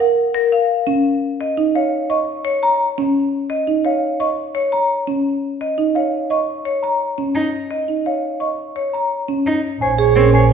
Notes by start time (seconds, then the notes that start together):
0.00 A#4 F#5
0.34 A#4
0.52 F5
0.87 C#4
1.41 D#5
1.57 D#4
1.75 C#5 F5
2.10 D#5 C#6
2.45 C#5
2.63 A#5
2.98 C#4
3.50 D#5
3.67 D#4
3.85 C#5 F5
4.20 D#5 C#6
4.55 C#5
4.72 A#5
5.07 C#4
5.61 D#5
5.78 D#4
5.95 C#5 F5
6.30 D#5 C#6
6.65 C#5
6.83 A#5
7.18 C#4
7.35 D#4
7.71 D#5
7.88 D#4
8.06 C#5 F5
8.40 D#5 C#6
8.76 C#5
8.93 A#5
9.28 C#4
9.46 D#4
9.81 A#1 C5 C#5 G#5
9.98 G#4 C#5
10.16 C4 C#4 A#4 C#5
10.33 C5 C#5 G#5